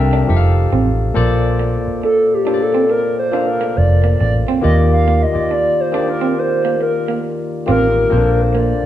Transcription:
0.00 0.22 C2 medium
0.00 0.30 C3 medium
0.00 0.30 G3 medium
0.00 0.30 D4 medium
0.00 0.29 A4 medium
0.00 0.30 A#4 medium
0.00 0.30 E5 medium
0.00 0.30 F5 medium
0.00 0.30 G5 medium
0.00 0.73 G5 loud
0.13 0.23 D4 medium
0.27 0.66 F1 medium
0.27 1.05 F3 medium
0.27 1.06 D#4 medium
0.27 1.06 G4 medium
0.27 1.06 A4 medium
0.27 0.37 E5 medium
0.37 1.10 F5 loud
0.73 1.09 A1 medium
0.73 0.90 C4 medium
1.14 1.76 A#1 loud
1.14 2.31 A#2 loud
1.14 2.31 A#3 medium
1.14 2.31 A4 medium
1.14 2.32 C5 medium
1.14 2.32 D5 loud
1.59 1.77 A#3 medium
1.88 muted fingered electric bass stroke soft
2.04 2.35 A4 medium
2.04 muted clean electric guitar stroke soft
2.34 2.64 G4 medium
2.44 3.22 A#2 medium
2.44 3.23 A#3 medium
2.44 2.64 D4 medium
2.44 3.23 A4 medium
2.44 3.24 C5 medium
2.44 2.54 C#5 medium
2.54 3.27 D5 medium
2.62 2.90 A4 medium
2.74 2.84 C4 medium
2.90 3.17 A#4 medium
2.90 muted clean electric guitar stroke soft
3.19 3.46 C5 medium
3.31 4.48 A#2 medium
3.31 4.48 A#3 medium
3.31 3.51 D4 medium
3.31 4.49 A4 medium
3.31 4.49 C5 medium
3.31 4.49 F5 medium
3.47 3.78 A#4 medium
3.61 3.71 A#3 medium
3.76 4.14 F1 medium
3.76 4.19 D5 loud
4.04 4.14 A#3 medium
4.20 4.43 A1 medium
4.20 4.34 D5 medium
4.20 muted clean electric guitar stroke soft
4.48 4.58 C4 medium
4.61 5.24 D#2 loud
4.61 5.21 D#3 medium
4.61 5.21 A#3 medium
4.61 5.21 F4 medium
4.61 5.22 G4 medium
4.61 5.22 D5 medium
4.61 4.76 D#5 loud
4.93 5.24 F5 medium
5.08 5.25 A#3 medium
5.22 5.53 D#5 medium
5.32 5.86 D#3 medium
5.32 5.86 A#3 medium
5.32 5.86 F4 medium
5.32 5.87 G4 medium
5.32 5.87 D5 medium
5.32 muted fingered electric bass stroke soft
5.51 5.82 D5 loud
5.51 muted clean electric guitar stroke soft
5.80 6.08 C5 medium
5.92 7.46 D#3 medium
5.92 7.46 A#3 medium
5.92 6.12 D4 medium
5.92 7.47 F4 medium
5.92 7.47 G4 medium
5.92 7.47 D5 medium
6.09 6.40 A#4 loud
6.21 6.32 C4 medium
6.39 6.81 C5 medium
6.65 6.75 A#3 medium
6.81 7.22 A#4 medium
6.81 muted clean electric guitar stroke soft
7.08 7.19 A#3 medium
7.66 8.05 A1 medium
7.66 8.05 D#3 medium
7.66 8.06 A#3 medium
7.66 7.86 C4 medium
7.66 8.06 F4 medium
7.66 8.06 G4 medium
7.66 8.07 F5 medium
7.71 8.43 A#4 medium
8.09 8.72 A#1 loud
8.09 8.86 A#2 medium
8.09 8.86 A#3 medium
8.09 8.19 C4 medium
8.09 8.86 A4 medium
8.09 8.86 C5 medium
8.17 8.86 D4 medium
8.42 8.59 C5 medium
8.55 8.73 A#3 medium
8.55 8.86 D5 medium

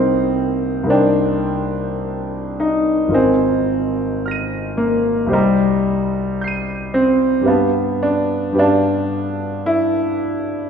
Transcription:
0.00 0.83 C2 soft
0.00 3.16 A#3 medium
0.00 3.14 C4 medium
0.00 0.85 D#4 soft
0.00 0.87 A#4 soft
0.00 0.89 C5 soft
0.00 0.91 G5 soft
0.83 3.07 C2 soft
0.83 2.58 D#4 soft
0.83 3.08 A#4 soft
0.89 2.60 D4 medium
0.89 3.09 C5 soft
0.89 3.10 G5 soft
2.60 3.14 D#4 medium
3.08 5.26 G#1 soft
3.08 5.26 F4 soft
3.08 5.27 A#4 soft
3.13 4.79 C4 medium
3.13 5.28 D#5 soft
3.13 5.29 G#5 soft
4.26 5.30 F6 soft
4.26 5.31 A#6 soft
4.31 5.33 D#7 soft
4.77 5.32 A#3 medium
5.26 7.41 C2 soft
5.26 7.41 G4 soft
5.26 7.43 C5 soft
5.31 6.94 G3 medium
5.31 7.44 D#5 soft
5.31 7.45 A#5 soft
6.41 7.45 G6 soft
6.41 7.46 C7 soft
6.47 7.48 D#7 soft
6.94 7.48 C4 medium
7.41 8.51 G2 soft
7.41 8.53 G4 soft
7.41 8.54 B4 soft
7.46 8.03 B3 medium
7.46 8.56 F5 soft
7.46 8.56 A5 soft
8.03 8.58 D4 medium
8.52 10.70 G2 soft
8.52 10.70 G4 soft
8.52 10.70 B4 soft
8.58 9.68 D4 medium
8.58 10.70 F5 soft
8.58 10.70 A5 soft
9.66 10.70 E4 medium

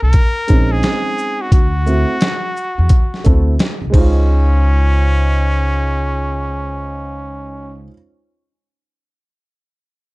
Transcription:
0.02 0.13 C2 medium
0.02 0.73 A#4 loud
0.13 kick loud
0.13 closed hi-hat medium
0.47 0.80 A#1 medium
0.47 1.47 G#3 medium
0.47 1.47 C4 medium
0.47 1.48 C#4 medium
0.47 1.48 D#4 medium
0.47 kick medium
0.47 closed hi-hat medium
0.47 shaker soft
0.72 1.43 G#4 loud
0.83 snare loud
0.83 closed hi-hat medium
1.18 shaker medium
1.41 1.53 F#4 medium
1.52 2.03 D2 loud
1.52 3.56 F#4 medium
1.52 kick loud
1.52 closed hi-hat medium
1.86 2.14 A3 medium
1.86 2.14 C4 medium
1.86 2.15 E4 medium
1.86 2.15 F#4 medium
1.86 shaker soft
2.21 snare loud
2.21 closed hi-hat medium
2.57 shaker soft
2.78 2.89 E2 medium
2.89 kick medium
2.89 closed hi-hat medium
3.14 snare soft
3.24 3.56 D2 loud
3.24 3.52 A3 medium
3.24 3.52 C4 medium
3.24 3.52 E4 medium
3.24 3.53 A4 medium
3.24 kick medium
3.24 closed hi-hat soft
3.24 shaker soft
3.59 snare loud
3.59 closed hi-hat medium
3.82 3.92 C2 medium
3.90 7.88 C#2 medium
3.90 7.84 G#3 medium
3.90 7.87 C5 medium
3.90 kick medium
3.90 crash medium
3.94 7.80 C#4 loud
3.94 7.90 D#4 medium
3.94 7.92 F4 medium

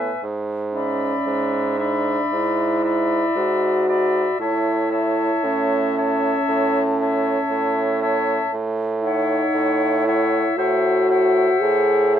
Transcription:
0.00 0.11 A2 soft
0.00 0.23 B3 soft
0.00 0.22 B4 soft
0.00 0.22 E5 soft
0.00 0.23 G#5 soft
0.23 1.14 G#2 soft
0.74 1.80 C#4 medium
0.74 1.78 D5 soft
0.74 1.78 E5 soft
0.74 1.78 B5 soft
1.27 2.20 G#2 soft
1.79 2.35 D4 soft
1.79 2.82 D5 soft
1.79 2.82 E5 soft
1.79 2.83 B5 soft
2.32 3.24 G#2 soft
2.32 3.38 E4 medium
2.84 3.86 D5 soft
2.84 3.86 E5 soft
2.84 3.87 B5 soft
3.36 4.27 G#2 soft
3.36 4.40 F#4 medium
3.89 4.39 D5 soft
3.89 4.39 E5 soft
3.89 4.39 B5 soft
4.40 5.31 A2 soft
4.40 5.46 E4 medium
4.40 4.90 C#5 soft
4.40 4.91 E5 soft
4.40 4.90 A5 soft
4.92 5.95 C#5 soft
4.92 5.95 E5 soft
4.92 5.95 A5 soft
5.43 6.37 A2 medium
5.43 8.53 C#4 medium
5.96 6.84 C#5 soft
5.96 6.83 E5 soft
5.96 6.98 A5 soft
6.49 7.38 A2 medium
7.00 8.00 C#5 soft
7.00 8.00 E5 soft
7.00 7.78 A5 soft
7.50 8.41 A2 medium
8.02 8.52 C#5 soft
8.02 8.52 E5 soft
8.02 8.52 A5 soft
8.53 9.43 A2 medium
9.04 10.08 D#4 medium
9.04 10.04 C#5 soft
9.04 10.04 E5 soft
9.04 10.04 F#5 soft
9.55 10.45 A2 medium
10.07 10.59 E4 medium
10.07 10.57 C#5 soft
10.07 10.57 E5 soft
10.07 10.56 F#5 soft
10.57 11.50 A2 medium
10.57 11.63 F#4 medium
10.57 11.09 C5 soft
10.57 11.09 E5 soft
10.57 11.08 F#5 soft
11.09 12.13 C5 soft
11.09 12.14 E5 soft
11.09 12.13 F#5 soft
11.61 12.20 A2 medium
11.61 12.20 G#4 medium
12.16 12.20 C5 soft
12.16 12.20 E5 soft
12.16 12.20 F#5 soft

